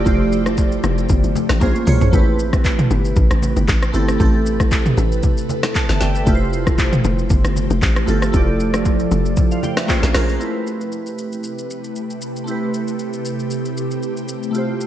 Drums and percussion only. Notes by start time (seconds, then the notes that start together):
0.06 kick, low conga, shaker
0.32 shaker
0.46 cross-stick, low bongo, shaker
0.57 kick, high bongo, shaker
0.72 shaker
0.84 cross-stick, low bongo, shaker
0.98 shaker
1.09 kick, low conga, shaker
1.24 shaker
1.35 high bongo, low conga, shaker
1.49 cross-stick, snare, low bongo, shaker
1.61 kick, high tom, high bongo, shaker
1.75 shaker
1.87 mid tom, open hi-hat, shaker
2.01 floor tom, shaker
2.13 kick, low conga, shaker
2.39 shaker
2.53 kick, cross-stick, low bongo, shaker
2.64 kick, clap, high bongo, shaker
2.79 mid tom, shaker
2.91 low bongo, shaker
3.05 shaker
3.16 kick, low conga, shaker
3.31 cross-stick, shaker
3.42 low conga, shaker
3.56 low bongo, shaker
3.68 kick, clap, high bongo, shaker
3.82 cross-stick, shaker
3.94 shaker
4.08 cross-stick, shaker
4.20 kick, low conga, shaker
4.46 shaker
4.60 kick, cross-stick, low bongo, shaker
4.71 kick, clap, high bongo, shaker
4.86 mid tom, shaker
4.97 low bongo, shaker
5.12 shaker
5.23 kick, low conga, shaker
5.38 shaker
5.49 low conga, shaker
5.63 cross-stick, snare, low bongo, shaker
5.75 kick, clap, high bongo, shaker
5.89 snare, shaker
6.01 snare, shaker
6.15 shaker
6.27 kick, low conga, shaker
6.53 shaker
6.67 kick, cross-stick, low bongo, shaker
6.78 kick, clap, high bongo, shaker
6.93 mid tom, shaker
7.04 low bongo, shaker
7.19 shaker
7.30 kick, low conga, shaker
7.45 cross-stick, shaker
7.56 low conga, shaker
7.70 low bongo, shaker
7.82 kick, clap, high bongo, shaker
7.96 cross-stick, shaker
8.08 shaker
8.22 cross-stick, shaker
8.34 kick, low conga, shaker
8.60 shaker
8.74 cross-stick, low bongo, shaker
8.85 kick, high bongo, shaker
8.99 shaker
9.11 low bongo, shaker
9.26 shaker
9.37 kick, low conga, shaker
9.51 shaker
9.63 high bongo, low conga, shaker
9.77 cross-stick, snare, low bongo, shaker
9.89 kick, clap, high bongo, shaker
10.03 snare, shaker
10.15 cross-stick, snare, open hi-hat, shaker
10.29 shaker
10.41 shaker
10.67 shaker
10.81 shaker
10.92 shaker
11.06 shaker
11.18 shaker
11.32 shaker
11.44 shaker
11.58 shaker
11.70 shaker
11.84 shaker
11.96 shaker
12.10 shaker
12.22 shaker
12.36 shaker
12.48 shaker
12.74 shaker
12.88 shaker
12.99 shaker
13.13 shaker
13.25 shaker
13.39 shaker
13.50 shaker
13.65 shaker
13.77 shaker
13.91 shaker
14.03 shaker
14.17 shaker
14.28 shaker
14.43 shaker
14.54 shaker
14.81 shaker